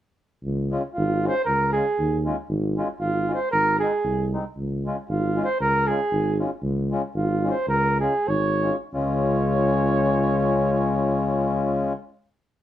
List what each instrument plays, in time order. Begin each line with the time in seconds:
0.44 tuba C#2
0.71 accordion G#3 C#4 F4
0.93 tuba G#1, flugelhorn F4
1.24 accordion G#3 C#4 F4, flugelhorn C5
1.45 tuba C#2, flugelhorn A#4
1.72 accordion G#3 C#4 F4, flugelhorn G#4
1.98 tuba D#2
2.25 accordion G#3 C#4 F4
2.48 tuba G#1
2.77 accordion G#3 C#4 F4
3.00 tuba G#1, flugelhorn F4
3.28 accordion G#3 C#4 F4
3.33 flugelhorn C5
3.51 tuba G#1, flugelhorn A#4
3.79 accordion G#3 C4 D#4, flugelhorn G#4
4.04 tuba C2
4.33 accordion G#3 C4 D#4
4.57 tuba C#2
4.86 accordion G#3 C#4 F4
5.08 tuba G#1, flugelhorn F4
5.36 accordion G#3 C#4 F4
5.44 flugelhorn C5
5.60 tuba C#2, flugelhorn A#4
5.87 accordion G#3 C#4 F4, flugelhorn G#4
6.12 tuba G#1
6.39 accordion G#3 C#4 F4
6.62 tuba C#2
6.91 accordion G#3 C#4 F4
7.15 tuba G#1, flugelhorn F4
7.43 accordion G#3 C#4 F4
7.49 flugelhorn C5
7.68 tuba C#2, flugelhorn A#4
8.00 accordion G#3 C#4 F4, flugelhorn G#4
8.28 tuba G#1, flugelhorn C#5
8.62 accordion G#3 C#4 F4
8.93 tuba C#2, accordion G#3 C#4 F4, flugelhorn C#5